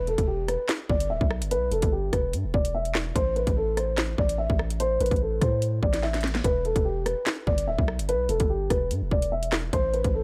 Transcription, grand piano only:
0.08 0.25 A4 medium
0.28 0.45 G4 medium
0.48 0.66 B4 medium
0.90 1.07 D5 medium
1.10 1.28 E5 medium
1.51 1.69 B4 loud
1.71 1.89 A4 medium
1.92 2.10 G4 medium
2.13 2.30 B4 medium
2.54 2.71 D5 medium
2.75 2.92 E5 medium
3.16 3.33 C5 loud
3.36 3.54 B4 medium
3.57 3.74 A4 medium
3.77 3.95 C5 medium
4.18 4.36 D5 medium
4.38 4.56 E5 medium
4.80 4.98 C5 loud
5.01 5.18 B4 medium
5.22 5.39 A4 medium
5.41 5.59 C5 medium
5.82 6.00 D5 medium
6.03 6.21 E5 medium
6.45 6.62 B4 loud
6.65 6.83 A4 medium
6.85 7.03 G4 medium
7.06 7.23 B4 medium
7.47 7.65 D5 medium
7.68 7.85 E5 medium
8.09 8.26 B4 loud
8.29 8.47 A4 medium
8.50 8.67 G4 medium
8.70 8.88 B4 medium
9.11 9.29 D5 medium
9.32 9.50 E5 medium
9.73 9.91 C5 loud
9.93 10.11 B4 medium
10.14 10.23 A4 medium

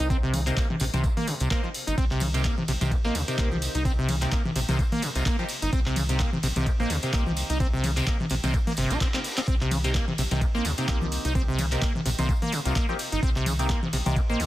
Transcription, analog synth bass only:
0.00 0.52 C2 loud
0.80 0.90 A#1 loud
0.94 1.09 C2 loud
1.41 1.48 C2 medium
1.88 1.95 G1 medium
1.98 2.51 C2 loud
2.68 2.77 A#1 loud
2.81 2.97 C2 loud
3.05 3.12 A#1 medium
3.15 3.24 D#2 medium
3.38 3.68 C2 medium
3.75 4.27 C2 medium
4.56 4.65 A#1 loud
4.69 4.84 C2 medium
5.15 5.23 C2 medium
5.62 5.70 G1 medium
5.73 6.26 C2 loud
6.43 6.52 A#1 loud
6.56 6.71 C2 medium
6.79 6.87 A#1 medium
6.90 6.99 D#2 medium
7.13 7.43 C2 medium
7.50 8.02 C2 loud
8.31 8.40 A#1 loud
8.44 8.59 C2 medium
8.78 8.87 G1 loud
8.91 8.98 A#1 medium
9.48 10.01 C2 loud
10.18 10.27 A#1 loud
10.31 10.47 C2 medium
10.55 10.62 A#1 medium
10.65 10.74 D#2 medium
10.88 11.18 C2 medium
11.25 11.77 C2 loud
12.06 12.15 A#1 loud
12.19 12.34 C2 loud
12.66 12.73 C2 medium
13.12 13.20 G1 medium
13.23 13.76 C2 loud
13.93 14.02 A#1 loud
14.06 14.22 C2 medium
14.29 14.37 A#1 medium
14.40 14.46 D#2 medium

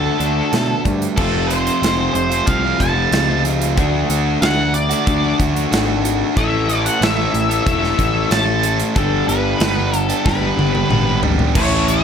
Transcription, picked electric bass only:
0.20 0.41 D2 medium
0.53 0.73 B2 medium
0.85 1.06 G2 medium
1.18 1.68 F1 medium
1.82 2.08 F1 medium
2.14 2.40 F1 medium
2.47 2.73 C2 medium
2.80 3.06 F1 medium
3.12 3.78 C#2 medium
3.78 4.03 D2 loud
4.10 4.35 D2 medium
4.42 4.93 D2 medium
5.07 5.32 D2 medium
5.40 5.65 D2 medium
5.72 6.23 G#1 medium
6.37 6.88 A1 medium
7.01 7.27 A1 medium
7.34 7.59 A1 medium
7.66 7.92 E1 loud
7.99 8.24 A1 medium
8.31 8.82 A1 medium
8.96 9.21 G1 medium
9.28 9.54 G1 medium
9.60 10.11 G1 medium
10.26 10.51 G1 medium
10.57 10.83 G1 medium
10.90 11.41 G#1 medium
11.56 12.04 A1 loud

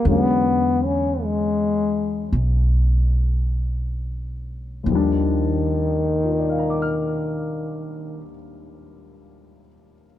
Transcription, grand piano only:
0.05 4.87 D3 soft
0.05 4.88 F#3 soft
0.05 4.89 G#3 soft
0.09 4.90 C#4 soft
4.83 8.22 D#2 soft
4.83 8.25 D#3 soft
4.90 8.28 F3 soft
4.90 8.30 G3 soft
4.95 8.34 D4 medium
6.24 9.59 F4 soft
6.32 9.66 A#4 soft
6.40 9.74 D5 soft
6.50 9.84 F5 soft
6.59 9.93 A#5 soft
6.70 10.04 D6 soft
6.82 10.16 F6 soft

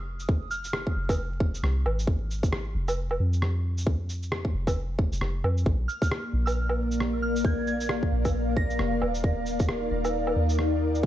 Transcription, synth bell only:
0.51 1.15 F6 medium
5.88 5.97 F6 medium
6.02 6.08 F6 medium
6.46 6.66 F6 medium
7.22 7.43 F6 medium
7.45 7.66 G#6 medium
7.68 7.92 G#6 medium
8.57 8.93 A#6 medium

